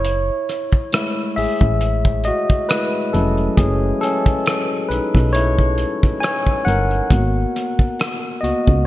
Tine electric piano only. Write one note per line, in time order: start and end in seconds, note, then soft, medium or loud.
0.00 0.89 E4 medium
0.00 0.88 C#5 medium
0.93 2.21 G#3 medium
0.93 2.21 A3 soft
0.93 2.22 E4 medium
1.36 2.22 G#4 medium
1.36 2.27 E5 medium
2.25 2.67 F#4 medium
2.25 2.66 D#5 medium
2.69 3.10 G#3 soft
2.69 3.10 A3 soft
2.69 3.11 E4 medium
2.69 3.14 B4 medium
3.13 4.42 F#3 soft
3.13 4.43 A3 soft
3.13 3.56 C#4 medium
3.13 4.43 E4 medium
3.13 3.59 A4 medium
3.57 3.79 C#4 medium
3.57 3.77 G#4 medium
4.01 4.87 C#4 medium
4.01 4.92 A4 medium
4.89 5.32 D#4 medium
4.89 5.35 B4 medium
5.33 6.19 E4 medium
5.33 6.23 C#5 medium
6.20 6.64 C#5 medium
6.20 6.67 G#5 medium
6.65 8.40 A#4 medium
6.65 8.47 F#5 medium
7.11 7.71 A#3 soft
7.11 7.71 B3 soft
7.11 7.72 F#4 medium
8.41 8.83 A#3 soft
8.41 8.83 B3 soft
8.41 8.84 F#4 medium
8.41 8.83 D#5 medium